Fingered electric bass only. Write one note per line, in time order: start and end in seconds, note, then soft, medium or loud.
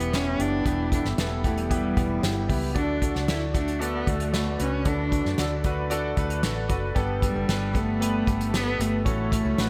0.00 0.35 E1 medium
0.39 0.64 F#1 medium
0.66 1.02 E1 loud
1.05 1.17 G1 medium
1.18 1.93 E1 medium
1.97 2.21 E1 medium
2.23 2.48 G1 medium
2.49 2.74 C#2 medium
2.76 3.12 D2 medium
3.16 3.28 C#2 medium
3.29 4.03 D2 medium
4.07 4.56 D2 medium
4.60 4.84 C#2 medium
4.86 5.22 D2 loud
5.26 5.38 F#2 medium
5.39 6.13 D2 medium
6.17 6.42 D2 medium
6.44 6.68 A1 medium
6.70 6.94 F#1 medium
6.96 7.33 G1 medium
7.35 7.48 F#1 medium
7.49 8.23 G1 loud
8.27 8.76 G1 medium
8.79 9.04 G1 medium
9.06 9.43 A1 medium
9.45 9.57 C#2 medium
9.58 9.70 A1 loud